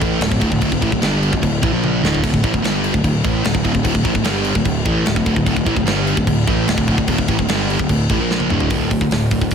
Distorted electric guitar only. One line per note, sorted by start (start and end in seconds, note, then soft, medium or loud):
0.00 0.19 A2 medium
0.00 0.20 E3 medium
0.00 0.21 A3 loud
0.20 0.29 D2 medium
0.20 0.29 A2 medium
0.30 0.39 D2 medium
0.30 0.40 A2 medium
0.40 0.50 D2 loud
0.40 0.50 A2 medium
0.51 0.60 D2 medium
0.51 0.61 A2 medium
0.61 0.70 D2 medium
0.61 0.70 A2 loud
0.71 0.81 D2 medium
0.71 0.80 A2 medium
0.81 0.91 A2 loud
0.81 0.92 E3 loud
0.92 1.01 D2 medium
0.92 1.02 A2 medium
1.02 1.32 G2 medium
1.02 1.32 D3 loud
1.02 1.32 G3 loud
1.32 1.41 D2 medium
1.32 1.41 A2 medium
1.42 1.59 D2 medium
1.42 1.59 A2 medium
1.62 1.72 A2 medium
1.62 1.73 E3 loud
1.72 2.02 A#2 medium
1.72 2.03 F3 medium
1.72 2.03 A#3 medium
2.02 2.22 D2 medium
2.02 2.23 A2 medium
2.02 2.23 D3 loud
2.23 2.32 D2 loud
2.23 2.32 A2 medium
2.33 2.43 D2 medium
2.33 2.42 A2 medium
2.43 2.53 A2 medium
2.43 2.53 E3 loud
2.53 2.62 D2 medium
2.53 2.63 A2 medium
2.63 2.93 G2 medium
2.63 2.93 D3 medium
2.63 2.93 G3 medium
2.94 3.03 D2 medium
2.94 3.03 A2 medium
3.04 3.20 D2 medium
3.04 3.21 A2 medium
3.24 3.43 A2 medium
3.24 3.44 E3 loud
3.24 3.44 A3 loud
3.44 3.52 D2 medium
3.44 3.53 A2 medium
3.54 3.62 D2 medium
3.54 3.63 A2 medium
3.63 3.72 D2 loud
3.63 3.73 A2 loud
3.73 3.82 D2 medium
3.73 3.83 A2 medium
3.83 3.92 D2 medium
3.83 3.93 A2 loud
3.94 4.03 D2 medium
3.94 4.03 A2 medium
4.04 4.14 A2 loud
4.04 4.14 E3 loud
4.14 4.24 D2 medium
4.14 4.24 A2 medium
4.24 4.54 G2 medium
4.24 4.55 D3 medium
4.24 4.55 G3 medium
4.55 4.64 D2 medium
4.55 4.64 A2 medium
4.65 4.81 D2 medium
4.65 4.82 A2 medium
4.85 5.05 A2 loud
4.85 5.05 E3 loud
4.85 5.06 A3 loud
5.06 5.15 D2 medium
5.06 5.15 A2 medium
5.16 5.25 D2 medium
5.16 5.26 A2 medium
5.26 5.36 D2 medium
5.26 5.36 A2 medium
5.37 5.45 D2 medium
5.37 5.46 A2 medium
5.46 5.55 D2 medium
5.46 5.56 A2 loud
5.57 5.66 D2 medium
5.57 5.65 A2 medium
5.66 5.76 A2 medium
5.66 5.76 E3 loud
5.77 5.86 D2 medium
5.77 5.87 A2 medium
5.86 6.16 G2 medium
5.86 6.17 D3 loud
5.86 6.17 G3 medium
6.17 6.26 D2 medium
6.17 6.27 A2 medium
6.27 6.44 D2 medium
6.27 6.44 A2 medium
6.47 6.67 A2 medium
6.47 6.67 E3 medium
6.47 6.67 A3 loud
6.68 6.77 D2 medium
6.68 6.77 A2 medium
6.78 6.87 D2 medium
6.78 6.88 A2 medium
6.88 6.97 D2 medium
6.88 6.97 A2 loud
6.98 7.07 D2 medium
6.98 7.08 A2 medium
7.08 7.18 D2 medium
7.08 7.18 A2 loud
7.19 7.28 D2 medium
7.19 7.28 A2 medium
7.29 7.38 A2 medium
7.29 7.39 E3 loud
7.39 7.48 D2 medium
7.39 7.49 A2 medium
7.49 7.78 G2 medium
7.49 7.79 D3 medium
7.49 7.79 G3 medium
7.79 7.89 D2 medium
7.79 7.89 A2 medium
7.90 8.06 D2 medium
7.90 8.06 A2 medium
8.10 8.19 A2 medium
8.10 8.19 E3 loud
8.20 8.49 A#2 medium
8.20 8.50 F3 loud
8.20 8.50 A#3 medium
8.50 8.70 D2 medium
8.50 8.70 A2 loud
8.50 8.70 D3 loud
8.71 8.89 D2 medium
8.71 8.90 A2 medium
8.71 8.90 D3 medium
8.91 9.01 D2 medium
8.91 9.01 A2 medium
9.02 9.11 D2 medium
9.02 9.11 A2 medium
9.12 9.30 D2 medium
9.12 9.30 A2 medium
9.32 9.41 D2 medium
9.32 9.40 A2 medium
9.42 9.50 D2 medium
9.42 9.51 A2 medium
9.52 9.55 D2 medium